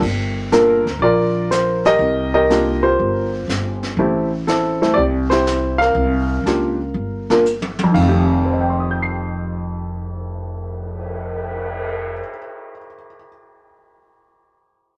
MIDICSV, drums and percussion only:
0, 0, Header, 1, 3, 480
1, 0, Start_track
1, 0, Tempo, 495868
1, 18, Time_signature, 4, 2, 24, 8
1, 14491, End_track
2, 0, Start_track
2, 0, Title_t, "Cymbal swell"
2, 8029, Note_on_c, 9, 59, 38
2, 11448, Note_off_c, 9, 59, 0
2, 14491, End_track
3, 0, Start_track
3, 0, Title_t, "Drums"
3, 22, Note_on_c, 9, 25, 45
3, 22, Note_on_c, 9, 36, 69
3, 22, Note_on_c, 9, 49, 71
3, 119, Note_off_c, 9, 36, 0
3, 119, Note_off_c, 9, 49, 0
3, 504, Note_on_c, 9, 44, 46
3, 506, Note_on_c, 9, 38, 46
3, 601, Note_off_c, 9, 44, 0
3, 602, Note_off_c, 9, 38, 0
3, 839, Note_on_c, 9, 38, 39
3, 936, Note_off_c, 9, 38, 0
3, 985, Note_off_c, 9, 25, 0
3, 985, Note_on_c, 9, 25, 46
3, 1465, Note_on_c, 9, 44, 60
3, 1467, Note_on_c, 9, 38, 57
3, 1562, Note_off_c, 9, 44, 0
3, 1564, Note_off_c, 9, 38, 0
3, 1791, Note_on_c, 9, 38, 35
3, 1888, Note_off_c, 9, 38, 0
3, 1948, Note_off_c, 9, 25, 0
3, 1948, Note_on_c, 9, 25, 48
3, 2421, Note_on_c, 9, 44, 42
3, 2423, Note_on_c, 9, 38, 50
3, 2518, Note_off_c, 9, 44, 0
3, 2520, Note_off_c, 9, 38, 0
3, 2907, Note_off_c, 9, 25, 0
3, 2907, Note_on_c, 9, 25, 38
3, 3381, Note_on_c, 9, 44, 59
3, 3383, Note_on_c, 9, 38, 55
3, 3477, Note_off_c, 9, 44, 0
3, 3479, Note_off_c, 9, 38, 0
3, 3705, Note_on_c, 9, 38, 38
3, 3802, Note_off_c, 9, 38, 0
3, 3857, Note_off_c, 9, 25, 0
3, 3857, Note_on_c, 9, 25, 44
3, 4332, Note_on_c, 9, 44, 52
3, 4334, Note_on_c, 9, 38, 45
3, 4428, Note_off_c, 9, 44, 0
3, 4430, Note_off_c, 9, 38, 0
3, 4671, Note_on_c, 9, 38, 37
3, 4768, Note_off_c, 9, 38, 0
3, 4812, Note_off_c, 9, 25, 0
3, 4812, Note_on_c, 9, 25, 43
3, 5141, Note_on_c, 9, 38, 50
3, 5238, Note_off_c, 9, 38, 0
3, 5293, Note_on_c, 9, 44, 52
3, 5295, Note_on_c, 9, 38, 62
3, 5390, Note_off_c, 9, 44, 0
3, 5392, Note_off_c, 9, 38, 0
3, 5628, Note_on_c, 9, 38, 34
3, 5725, Note_off_c, 9, 38, 0
3, 5769, Note_off_c, 9, 25, 0
3, 5769, Note_on_c, 9, 25, 45
3, 6256, Note_on_c, 9, 44, 43
3, 6258, Note_on_c, 9, 38, 47
3, 6353, Note_off_c, 9, 44, 0
3, 6355, Note_off_c, 9, 38, 0
3, 6736, Note_off_c, 9, 25, 0
3, 6736, Note_on_c, 9, 25, 38
3, 7066, Note_on_c, 9, 38, 48
3, 7163, Note_off_c, 9, 38, 0
3, 7216, Note_on_c, 9, 44, 56
3, 7313, Note_off_c, 9, 44, 0
3, 7378, Note_on_c, 9, 48, 56
3, 7474, Note_off_c, 9, 48, 0
3, 7538, Note_on_c, 9, 48, 66
3, 7635, Note_off_c, 9, 48, 0
3, 7692, Note_on_c, 9, 36, 53
3, 7697, Note_on_c, 9, 49, 58
3, 7789, Note_off_c, 9, 36, 0
3, 7793, Note_off_c, 9, 49, 0
3, 8086, Note_off_c, 9, 25, 0
3, 14491, End_track
0, 0, End_of_file